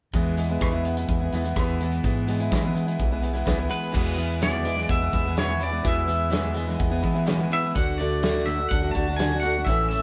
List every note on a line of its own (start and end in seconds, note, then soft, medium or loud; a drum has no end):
0.13 0.57 E2 loud
0.13 2.04 E2 medium
0.13 0.36 E3 medium
0.13 0.36 G#3 medium
0.13 0.38 B3 medium
0.13 0.38 E4 medium
0.13 kick loud
0.13 closed hi-hat medium
0.37 0.49 E3 medium
0.37 0.49 G#3 medium
0.37 0.49 B3 medium
0.37 0.48 E4 medium
0.37 closed hi-hat medium
0.49 0.60 G#3 soft
0.49 0.60 B3 soft
0.49 0.61 E4 medium
0.60 0.72 E3 medium
0.60 0.73 G#3 medium
0.60 0.73 B3 medium
0.60 0.72 E4 medium
0.60 kick loud
0.60 cross-stick loud
0.60 closed hi-hat medium
0.73 0.97 G#3 soft
0.73 0.97 B3 medium
0.73 0.96 E4 medium
0.85 1.32 B3 medium
0.85 closed hi-hat medium
0.97 1.22 G#3 soft
0.97 1.20 B3 soft
0.97 1.19 E4 soft
0.97 closed hi-hat medium
1.09 1.30 E2 medium
1.09 2.28 E3 medium
1.09 kick medium
1.09 closed hi-hat medium
1.20 1.33 G#3 soft
1.20 1.33 B3 soft
1.20 1.32 E4 soft
1.33 1.54 E2 medium
1.33 1.44 E3 medium
1.33 1.45 G#3 medium
1.33 1.45 B3 medium
1.33 1.44 E4 medium
1.33 closed hi-hat medium
1.44 1.58 G#3 soft
1.44 1.57 B3 soft
1.44 1.56 E4 medium
1.44 closed hi-hat medium
1.56 2.00 E2 medium
1.56 1.80 E3 medium
1.56 1.81 G#3 medium
1.56 1.81 B3 medium
1.56 1.82 E4 medium
1.56 kick loud
1.56 cross-stick medium
1.56 closed hi-hat medium
1.80 2.02 E3 medium
1.80 2.03 G#3 medium
1.80 2.04 B3 medium
1.80 2.04 E4 medium
1.80 closed hi-hat medium
1.92 closed hi-hat medium
2.03 3.23 E2 medium
2.03 2.48 G#2 loud
2.03 2.26 E3 medium
2.03 2.27 G#3 medium
2.03 2.28 B3 medium
2.03 2.28 E4 medium
2.03 kick loud
2.03 closed hi-hat medium
2.27 2.39 E3 medium
2.27 2.40 G#3 medium
2.27 2.40 B3 medium
2.27 2.39 E4 medium
2.27 closed hi-hat medium
2.40 2.51 G#3 soft
2.40 2.51 B3 medium
2.40 2.52 E4 medium
2.40 closed hi-hat medium
2.51 2.63 E3 medium
2.51 2.96 E3 loud
2.51 2.64 G#3 medium
2.51 2.64 B3 medium
2.51 2.62 E4 medium
2.51 kick loud
2.51 snare loud
2.51 closed hi-hat medium
2.63 2.87 G#3 soft
2.63 2.87 B3 medium
2.63 2.85 E4 medium
2.75 3.21 B3 medium
2.75 closed hi-hat medium
2.86 3.11 G#3 soft
2.86 3.11 B3 soft
2.86 3.10 E4 soft
2.86 closed hi-hat medium
2.99 3.43 B1 medium
2.99 3.95 E3 medium
2.99 kick loud
2.99 closed hi-hat medium
3.11 3.21 G#3 soft
3.11 3.22 B3 medium
3.11 3.23 E4 medium
3.22 3.34 E3 medium
3.22 3.35 G#3 medium
3.22 3.34 B3 medium
3.22 3.32 E4 medium
3.22 closed hi-hat medium
3.33 3.45 G#3 soft
3.33 3.46 B3 soft
3.33 3.46 E4 medium
3.33 closed hi-hat medium
3.46 3.69 C#2 medium
3.46 3.58 E3 medium
3.46 3.59 G#3 medium
3.46 3.58 B3 medium
3.46 3.58 E4 loud
3.46 kick loud
3.46 snare loud
3.46 closed hi-hat medium
3.59 3.68 G#3 soft
3.59 3.69 B3 soft
3.59 3.70 E4 medium
3.69 3.91 E3 medium
3.69 3.92 G#3 medium
3.69 3.92 B3 medium
3.69 3.93 E4 medium
3.69 4.43 B4 medium
3.69 closed hi-hat medium
3.83 closed hi-hat soft
3.92 4.17 E2 medium
3.92 4.86 E2 medium
3.92 4.17 B2 medium
3.92 4.15 E3 medium
3.92 4.15 G#3 medium
3.92 4.16 B3 medium
3.92 4.17 E4 medium
3.92 kick loud
3.92 crash medium
4.16 4.40 E3 medium
4.16 4.41 G#3 medium
4.16 4.41 B3 medium
4.16 4.41 E4 medium
4.16 closed hi-hat medium
4.41 4.65 E2 medium
4.41 4.65 B2 medium
4.41 4.63 E3 medium
4.41 4.64 G#3 medium
4.41 4.64 B3 medium
4.41 4.65 E4 medium
4.41 4.87 D5 medium
4.41 snare loud
4.41 closed hi-hat medium
4.64 4.77 E3 medium
4.64 4.77 G#3 medium
4.64 4.76 B3 medium
4.64 4.75 E4 medium
4.64 closed hi-hat medium
4.76 5.02 E3 soft
4.76 5.01 G#3 soft
4.76 5.00 B3 soft
4.76 4.99 E4 soft
4.76 snare soft
4.89 5.12 E2 medium
4.89 5.35 B3 medium
4.89 5.38 E5 medium
4.89 kick loud
4.89 closed hi-hat medium
5.01 5.11 E3 soft
5.01 5.11 G#3 soft
5.01 5.12 B3 medium
5.01 5.13 E4 soft
5.12 5.81 E2 medium
5.12 5.25 E3 medium
5.12 5.25 G#3 medium
5.12 5.26 B3 medium
5.12 5.25 E4 medium
5.12 kick medium
5.12 closed hi-hat medium
5.26 5.37 E3 soft
5.26 5.37 G#3 soft
5.26 5.38 B3 soft
5.26 5.38 E4 soft
5.37 5.49 E2 medium
5.37 5.50 B2 medium
5.37 5.50 E3 medium
5.37 5.49 G#3 medium
5.37 5.49 B3 medium
5.37 5.48 E4 medium
5.37 5.63 C#5 loud
5.37 snare loud
5.37 closed hi-hat medium
5.49 5.60 E3 soft
5.49 5.60 G#3 soft
5.49 5.61 B3 medium
5.49 5.61 E4 medium
5.61 5.73 E3 medium
5.61 5.71 G#3 medium
5.61 5.71 B3 medium
5.61 5.70 E4 medium
5.61 5.87 D5 medium
5.61 closed hi-hat medium
5.71 5.83 E3 soft
5.71 5.83 G#3 soft
5.71 5.83 B3 soft
5.71 5.84 E4 soft
5.83 6.08 E2 medium
5.83 6.76 E2 medium
5.83 6.08 B2 medium
5.83 6.04 E3 medium
5.83 6.06 G#3 medium
5.83 6.06 B3 medium
5.83 6.06 E4 medium
5.83 kick loud
5.83 closed hi-hat medium
5.88 6.78 E5 medium
6.05 6.29 E3 medium
6.05 6.29 G#3 medium
6.05 6.30 B3 medium
6.05 6.30 E4 medium
6.05 closed hi-hat medium
6.30 6.55 E2 medium
6.30 6.55 B2 medium
6.30 6.52 E3 medium
6.30 6.53 G#3 medium
6.30 6.55 B3 medium
6.30 6.55 E4 medium
6.30 snare loud
6.30 closed hi-hat medium
6.53 6.67 E3 medium
6.53 6.67 G#3 medium
6.53 6.66 B3 medium
6.53 6.65 E4 medium
6.53 closed hi-hat medium
6.66 6.91 E3 soft
6.66 6.90 G#3 soft
6.66 6.90 B3 soft
6.66 6.89 E4 soft
6.66 snare soft
6.79 7.02 E2 loud
6.79 7.25 B3 medium
6.79 kick medium
6.79 closed hi-hat medium
6.90 7.01 E3 medium
6.90 7.02 G#3 soft
6.90 7.02 B3 medium
6.90 7.02 E4 medium
7.02 7.15 E3 medium
7.02 7.71 E3 medium
7.02 7.15 G#3 medium
7.02 7.14 B3 medium
7.02 7.13 E4 medium
7.02 kick medium
7.02 closed hi-hat medium
7.14 7.26 E3 soft
7.14 7.26 G#3 medium
7.14 7.26 B3 medium
7.14 7.26 E4 medium
7.26 7.39 E2 medium
7.26 7.39 B2 medium
7.26 7.39 E3 medium
7.26 7.39 G#3 medium
7.26 7.38 B3 medium
7.26 7.37 E4 loud
7.26 snare loud
7.26 closed hi-hat medium
7.39 7.50 E3 medium
7.39 7.50 G#3 medium
7.39 7.50 B3 soft
7.39 7.51 E4 medium
7.51 7.63 E3 medium
7.51 7.63 G#3 medium
7.51 7.63 B3 medium
7.51 7.62 E4 medium
7.51 7.75 E5 medium
7.51 closed hi-hat medium
7.63 7.75 E3 soft
7.63 7.75 G#3 soft
7.63 7.75 B3 soft
7.63 7.75 E4 soft
7.75 8.67 D2 medium
7.75 7.97 D3 medium
7.75 7.98 A3 medium
7.75 7.99 D4 medium
7.75 8.00 F#4 medium
7.75 8.00 F#5 medium
7.75 kick loud
7.75 closed hi-hat medium
7.98 8.21 D3 medium
7.98 8.22 A3 medium
7.98 8.23 D4 medium
7.98 8.23 F#4 medium
7.98 8.48 D5 medium
7.98 closed hi-hat medium
8.23 8.45 D3 medium
8.23 8.46 A3 medium
8.23 8.47 D4 medium
8.23 8.48 F#4 medium
8.23 snare loud
8.23 closed hi-hat medium
8.46 8.59 D3 medium
8.46 8.58 A3 medium
8.46 8.57 D4 medium
8.46 8.57 F#4 medium
8.46 8.68 E5 medium
8.46 closed hi-hat medium
8.58 8.83 A3 soft
8.58 8.81 D4 soft
8.58 8.80 F#4 soft
8.69 8.93 D2 medium
8.69 9.18 D4 medium
8.69 8.91 F#5 loud
8.69 kick loud
8.69 closed hi-hat medium
8.81 8.95 A3 soft
8.81 8.95 D4 soft
8.81 8.94 F#4 medium
8.91 9.62 D2 medium
8.91 9.06 D3 medium
8.91 9.16 A5 medium
8.91 kick medium
8.91 closed hi-hat medium
8.96 9.07 A3 medium
8.96 9.07 D4 medium
8.96 9.07 F#4 medium
9.08 9.18 A3 soft
9.08 9.19 D4 soft
9.08 9.19 F#4 medium
9.16 9.31 D3 medium
9.16 9.31 A3 medium
9.16 9.31 D4 medium
9.16 9.39 G#5 loud
9.16 snare loud
9.16 closed hi-hat medium
9.21 9.31 F#4 medium
9.32 9.43 A3 soft
9.32 9.43 D4 soft
9.32 9.43 F#4 medium
9.40 9.55 D3 medium
9.40 9.66 F#5 medium
9.40 closed hi-hat medium
9.44 9.55 A3 medium
9.44 9.55 D4 medium
9.44 9.55 F#4 medium
9.57 9.67 A3 soft
9.57 9.68 D4 soft
9.57 9.67 F#4 soft
9.65 10.02 A1 loud
9.65 9.90 A2 medium
9.65 9.90 E3 medium
9.65 9.91 A3 medium
9.65 9.91 C#4 medium
9.65 9.87 E5 loud
9.65 kick loud
9.65 closed hi-hat medium
9.69 9.91 E4 medium
9.89 10.02 E3 medium
9.89 10.02 A3 medium
9.89 10.02 C#4 medium
9.89 10.02 E5 medium
9.89 closed hi-hat medium
9.93 10.02 E4 medium